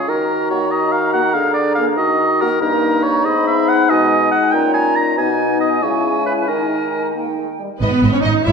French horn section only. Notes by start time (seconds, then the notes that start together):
0.50 A#3 F#4
1.13 A#3 F#4
1.78 A#3 G#4
2.41 A#3 F#4
2.61 A#3 D#4
3.25 B3
3.91 G#3
4.53 C#4
5.17 B3 D#4
5.82 G#3 E4
6.47 D#4
7.16 A#3
7.38 G#3
7.59 G3